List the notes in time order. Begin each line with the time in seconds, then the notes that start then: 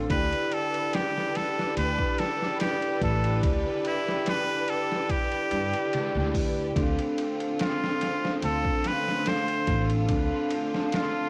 Already playing: D3 D4 A4 C5 F5
0.09 D2 D4 E4 G4 B4 D5, kick, ride
0.32 ride
0.51 A4, ride
0.74 ride
0.93 G4, snare, ride
1.17 snare
1.35 A4, snare, ride
1.59 snare
1.77 D2 B4, ride
1.99 kick
2.18 A4, snare, ride
2.42 snare
2.60 E4 G4 D5, snare, ride
2.82 ride
3.01 A1 A4, kick, ride
3.24 ride
3.42 D2 E4 G4 D5, kick, ride
3.85 E4, ride
4.08 snare
4.26 B4, snare, ride
4.68 A4, ride
4.92 snare
5.09 G4, kick, ride
5.32 ride
5.51 G2 E4 G4 D5, ride
5.72 E4 G4 D5, ride
5.93 snare, ride
6.15 D2, snare
6.34 kick, open hi-hat
6.75 D2 D3 A3 C4 D4 F4 A4 F5, kick, ride
6.99 ride
7.18 ride
7.40 ride
7.59 F4, snare, ride
7.84 snare
8.01 snare, ride
8.25 snare
8.42 D2 A4, ride
8.65 kick
8.84 B4, snare, ride
9.08 snare
9.26 D4 A4 C5 F5, snare, ride
9.48 ride
9.67 A1, kick, ride
9.90 ride
10.08 D2 C4 D4 A4 F5, kick, ride
10.51 ride
10.74 snare
10.92 F4, snare, ride